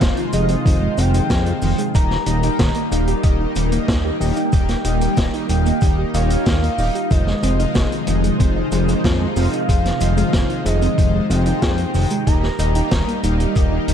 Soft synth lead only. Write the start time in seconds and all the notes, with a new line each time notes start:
Already playing: F5
0.34 D#5
0.98 G5
1.95 A#5
4.20 G5
5.50 G5
6.14 F5
7.11 D#5
9.37 F5
10.66 D#5
11.30 G5
12.27 A#5